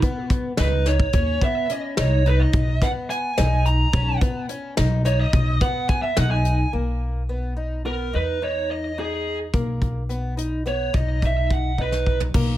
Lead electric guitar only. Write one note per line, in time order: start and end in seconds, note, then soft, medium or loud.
0.59 0.88 B4 medium
0.87 1.43 C#5 medium
1.44 1.72 E5 medium
1.72 1.80 D#5 medium
1.99 2.28 C#5 medium
2.27 2.41 B4 medium
2.40 2.83 D#5 medium
2.82 2.90 F#5 medium
3.10 3.68 G#5 loud
3.66 4.18 A#5 loud
5.06 5.20 C#5 medium
5.20 5.62 D#5 medium
5.61 5.89 F#5 medium
5.89 6.02 G#5 loud
6.02 6.17 E5 loud
6.17 6.30 F#5 loud
6.31 6.70 G#5 medium
7.86 8.15 A#4 medium
8.15 8.43 B4 medium
8.43 8.71 C#5 medium
8.71 8.97 D#5 medium
8.99 9.38 G#4 medium
10.67 10.95 C#5 medium
10.95 11.21 D#5 medium
11.25 11.53 E5 medium
11.52 11.80 F#5 medium
11.81 12.19 B4 medium